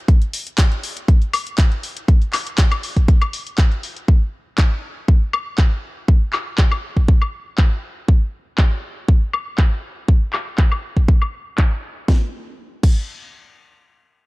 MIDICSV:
0, 0, Header, 1, 2, 480
1, 0, Start_track
1, 0, Tempo, 500000
1, 81, Time_signature, 4, 2, 24, 8
1, 13693, End_track
2, 0, Start_track
2, 0, Title_t, "Drums"
2, 81, Note_on_c, 9, 36, 126
2, 82, Note_on_c, 9, 42, 50
2, 177, Note_off_c, 9, 36, 0
2, 178, Note_off_c, 9, 42, 0
2, 208, Note_on_c, 9, 42, 26
2, 304, Note_off_c, 9, 42, 0
2, 321, Note_on_c, 9, 46, 115
2, 417, Note_off_c, 9, 46, 0
2, 448, Note_on_c, 9, 42, 50
2, 544, Note_off_c, 9, 42, 0
2, 558, Note_on_c, 9, 39, 118
2, 561, Note_on_c, 9, 36, 118
2, 561, Note_on_c, 9, 42, 52
2, 654, Note_off_c, 9, 39, 0
2, 657, Note_off_c, 9, 36, 0
2, 657, Note_off_c, 9, 42, 0
2, 688, Note_on_c, 9, 42, 25
2, 784, Note_off_c, 9, 42, 0
2, 801, Note_on_c, 9, 46, 97
2, 897, Note_off_c, 9, 46, 0
2, 928, Note_on_c, 9, 42, 47
2, 1024, Note_off_c, 9, 42, 0
2, 1041, Note_on_c, 9, 36, 120
2, 1042, Note_on_c, 9, 42, 50
2, 1137, Note_off_c, 9, 36, 0
2, 1138, Note_off_c, 9, 42, 0
2, 1168, Note_on_c, 9, 42, 25
2, 1264, Note_off_c, 9, 42, 0
2, 1281, Note_on_c, 9, 46, 110
2, 1281, Note_on_c, 9, 76, 80
2, 1377, Note_off_c, 9, 46, 0
2, 1377, Note_off_c, 9, 76, 0
2, 1408, Note_on_c, 9, 42, 48
2, 1504, Note_off_c, 9, 42, 0
2, 1518, Note_on_c, 9, 39, 117
2, 1521, Note_on_c, 9, 36, 120
2, 1521, Note_on_c, 9, 42, 52
2, 1614, Note_off_c, 9, 39, 0
2, 1617, Note_off_c, 9, 36, 0
2, 1617, Note_off_c, 9, 42, 0
2, 1648, Note_on_c, 9, 42, 25
2, 1744, Note_off_c, 9, 42, 0
2, 1761, Note_on_c, 9, 46, 93
2, 1857, Note_off_c, 9, 46, 0
2, 1888, Note_on_c, 9, 42, 52
2, 1984, Note_off_c, 9, 42, 0
2, 2001, Note_on_c, 9, 36, 122
2, 2001, Note_on_c, 9, 42, 50
2, 2097, Note_off_c, 9, 36, 0
2, 2097, Note_off_c, 9, 42, 0
2, 2128, Note_on_c, 9, 42, 25
2, 2224, Note_off_c, 9, 42, 0
2, 2237, Note_on_c, 9, 39, 60
2, 2241, Note_on_c, 9, 46, 113
2, 2241, Note_on_c, 9, 76, 67
2, 2333, Note_off_c, 9, 39, 0
2, 2337, Note_off_c, 9, 46, 0
2, 2337, Note_off_c, 9, 76, 0
2, 2368, Note_on_c, 9, 42, 50
2, 2464, Note_off_c, 9, 42, 0
2, 2477, Note_on_c, 9, 39, 118
2, 2480, Note_on_c, 9, 36, 116
2, 2481, Note_on_c, 9, 42, 48
2, 2573, Note_off_c, 9, 39, 0
2, 2576, Note_off_c, 9, 36, 0
2, 2577, Note_off_c, 9, 42, 0
2, 2607, Note_on_c, 9, 42, 24
2, 2607, Note_on_c, 9, 76, 84
2, 2703, Note_off_c, 9, 42, 0
2, 2703, Note_off_c, 9, 76, 0
2, 2721, Note_on_c, 9, 46, 95
2, 2817, Note_off_c, 9, 46, 0
2, 2847, Note_on_c, 9, 36, 61
2, 2847, Note_on_c, 9, 42, 48
2, 2943, Note_off_c, 9, 36, 0
2, 2943, Note_off_c, 9, 42, 0
2, 2960, Note_on_c, 9, 36, 113
2, 2960, Note_on_c, 9, 42, 48
2, 3056, Note_off_c, 9, 36, 0
2, 3056, Note_off_c, 9, 42, 0
2, 3087, Note_on_c, 9, 42, 24
2, 3087, Note_on_c, 9, 76, 59
2, 3183, Note_off_c, 9, 42, 0
2, 3183, Note_off_c, 9, 76, 0
2, 3200, Note_on_c, 9, 46, 106
2, 3296, Note_off_c, 9, 46, 0
2, 3327, Note_on_c, 9, 42, 47
2, 3423, Note_off_c, 9, 42, 0
2, 3437, Note_on_c, 9, 39, 116
2, 3440, Note_on_c, 9, 36, 117
2, 3441, Note_on_c, 9, 42, 49
2, 3533, Note_off_c, 9, 39, 0
2, 3536, Note_off_c, 9, 36, 0
2, 3537, Note_off_c, 9, 42, 0
2, 3567, Note_on_c, 9, 42, 25
2, 3663, Note_off_c, 9, 42, 0
2, 3680, Note_on_c, 9, 46, 96
2, 3776, Note_off_c, 9, 46, 0
2, 3807, Note_on_c, 9, 42, 51
2, 3903, Note_off_c, 9, 42, 0
2, 3920, Note_on_c, 9, 36, 115
2, 4016, Note_off_c, 9, 36, 0
2, 4397, Note_on_c, 9, 39, 108
2, 4400, Note_on_c, 9, 36, 107
2, 4493, Note_off_c, 9, 39, 0
2, 4496, Note_off_c, 9, 36, 0
2, 4881, Note_on_c, 9, 36, 111
2, 4977, Note_off_c, 9, 36, 0
2, 5121, Note_on_c, 9, 76, 82
2, 5217, Note_off_c, 9, 76, 0
2, 5357, Note_on_c, 9, 39, 106
2, 5361, Note_on_c, 9, 36, 112
2, 5453, Note_off_c, 9, 39, 0
2, 5457, Note_off_c, 9, 36, 0
2, 5841, Note_on_c, 9, 36, 111
2, 5937, Note_off_c, 9, 36, 0
2, 6077, Note_on_c, 9, 39, 57
2, 6081, Note_on_c, 9, 76, 62
2, 6173, Note_off_c, 9, 39, 0
2, 6177, Note_off_c, 9, 76, 0
2, 6317, Note_on_c, 9, 39, 106
2, 6321, Note_on_c, 9, 36, 107
2, 6413, Note_off_c, 9, 39, 0
2, 6417, Note_off_c, 9, 36, 0
2, 6447, Note_on_c, 9, 76, 76
2, 6543, Note_off_c, 9, 76, 0
2, 6687, Note_on_c, 9, 36, 56
2, 6783, Note_off_c, 9, 36, 0
2, 6801, Note_on_c, 9, 36, 104
2, 6897, Note_off_c, 9, 36, 0
2, 6927, Note_on_c, 9, 76, 58
2, 7023, Note_off_c, 9, 76, 0
2, 7276, Note_on_c, 9, 39, 109
2, 7281, Note_on_c, 9, 36, 105
2, 7372, Note_off_c, 9, 39, 0
2, 7377, Note_off_c, 9, 36, 0
2, 7761, Note_on_c, 9, 36, 108
2, 7857, Note_off_c, 9, 36, 0
2, 8237, Note_on_c, 9, 39, 113
2, 8241, Note_on_c, 9, 36, 105
2, 8333, Note_off_c, 9, 39, 0
2, 8337, Note_off_c, 9, 36, 0
2, 8721, Note_on_c, 9, 36, 109
2, 8817, Note_off_c, 9, 36, 0
2, 8961, Note_on_c, 9, 76, 75
2, 9057, Note_off_c, 9, 76, 0
2, 9198, Note_on_c, 9, 39, 114
2, 9201, Note_on_c, 9, 36, 100
2, 9294, Note_off_c, 9, 39, 0
2, 9297, Note_off_c, 9, 36, 0
2, 9681, Note_on_c, 9, 36, 107
2, 9777, Note_off_c, 9, 36, 0
2, 9917, Note_on_c, 9, 39, 59
2, 9921, Note_on_c, 9, 76, 57
2, 10013, Note_off_c, 9, 39, 0
2, 10017, Note_off_c, 9, 76, 0
2, 10157, Note_on_c, 9, 39, 116
2, 10161, Note_on_c, 9, 36, 103
2, 10253, Note_off_c, 9, 39, 0
2, 10257, Note_off_c, 9, 36, 0
2, 10288, Note_on_c, 9, 76, 72
2, 10384, Note_off_c, 9, 76, 0
2, 10527, Note_on_c, 9, 36, 58
2, 10623, Note_off_c, 9, 36, 0
2, 10641, Note_on_c, 9, 36, 106
2, 10737, Note_off_c, 9, 36, 0
2, 10768, Note_on_c, 9, 76, 52
2, 10864, Note_off_c, 9, 76, 0
2, 11117, Note_on_c, 9, 39, 117
2, 11121, Note_on_c, 9, 36, 105
2, 11213, Note_off_c, 9, 39, 0
2, 11217, Note_off_c, 9, 36, 0
2, 11600, Note_on_c, 9, 36, 106
2, 11601, Note_on_c, 9, 38, 85
2, 11696, Note_off_c, 9, 36, 0
2, 11697, Note_off_c, 9, 38, 0
2, 12321, Note_on_c, 9, 36, 105
2, 12321, Note_on_c, 9, 49, 82
2, 12417, Note_off_c, 9, 36, 0
2, 12417, Note_off_c, 9, 49, 0
2, 13693, End_track
0, 0, End_of_file